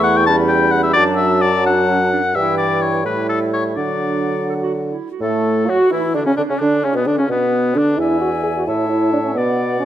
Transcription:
Already playing: E2 A3 E4 C#6
0.03 F#5
0.17 G5
0.26 G3 C#4 A5 B5
0.48 G5
0.71 F#5
0.83 E5
0.93 F#2 F#3 D4 D5 A5
1.16 E5
1.42 D5
1.65 D4 F#5
1.89 C#4
2.12 D4
2.34 G2 E3 E4 E5 G5
2.58 D5
2.82 C#5
3.04 A2 G3 E4 B4 E5
3.29 A4
3.53 C#5
3.76 D3 F#3 D4 D5 F#5
4.49 A4
4.62 F#4
4.87 E4
5.12 F#4
5.20 A2 A3 A4
5.67 F#3 F#4
5.90 E3 E4
6.14 D3 D4
6.25 C#3 C#4
6.37 D3 D4
6.48 C#3 C#4
6.59 D3 D4
6.83 C#3 C#4
6.94 B2 B3 B4
7.05 D3 D4
7.15 C#3 C#4
7.20 C#4
7.28 B2 B3 B4
7.75 D3 D4
7.98 E2 E4 D5 E5 G#5
8.21 F#4
8.43 G#4
8.56 F#4
8.67 A2 E4 C#5 E5 A5
8.89 E4
9.13 D4
9.25 C#4
9.34 B2 B3 D5 F#5
9.80 C#4

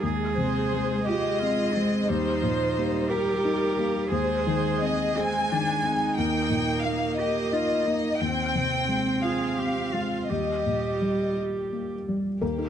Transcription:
0.02 D#2 G#3 G#4
0.36 C3 C5
0.73 G#3
1.05 G#3 F4 G4 D#5
1.39 C4 F4
1.74 G#3 C4
2.07 D#2 G3 D#4 C5
2.42 A#2 F3
2.76 G3 A#3
3.09 G4 A#4
3.45 D#4
3.78 A#3
4.11 D#2 G#3 G#4 C5
4.47 D#3
4.82 C4 D#5
5.17 G#3 C4 G#4 G#5
5.52 D#3 D4
5.84 C4 D#4
6.17 D#2 A#3 G5
6.50 A#2
6.84 A#3 F5
7.18 G4 D#5
7.52 D#4 F4
7.87 A#3 D#4
8.21 D#2 C4 G5
8.55 C3
8.88 G#3
9.23 F4 G#4 F5
9.58 C4 G4
9.93 G#3 F4
10.29 D#2 G3 G4 D#5
10.66 A#2
11.01 G3
11.37 G4
11.72 A#3
12.08 G3
12.41 D#2 A#3 G4 A#4
12.58 D#4 A#4

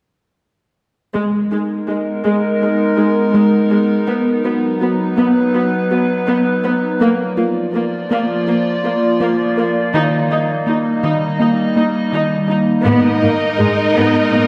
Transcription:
1.14 G#3 B3 D#4 A#4
1.52 G#3 D#4
1.89 G#3 D#4
2.25 G#3
2.61 G#3 D#4
2.98 G#3 D#4
3.34 G#3
3.71 G#3 G#4
4.07 F#3 B3 B4
4.44 B3 F#4
4.81 B3 F#4
5.17 B3
5.54 B3 F#4
5.91 B3 F#4
6.28 B3
6.64 B3 B4
7.01 F3 A#3 F4 D5
7.37 A#3 F4
7.74 A#3 F4
8.11 A#3
8.47 A#3 F4
8.84 A#3 F4
9.20 A#3
9.57 A#3 A#4
9.93 D#3 G3 D#4 D#5
10.30 A#3 D#4
10.67 A#3 D#4
11.03 D#3 D#4
11.40 A#3 D#4
11.76 A#3 D#4
12.13 D#3 D#4
12.49 D#4
12.86 G#2 G#3 B3 D#4 A#4 D#5
13.22 G#2 A#3 D#4
13.59 G#2 G#3 G#4
13.95 G#2 G#3 B3
14.32 G#2 A#3 B3

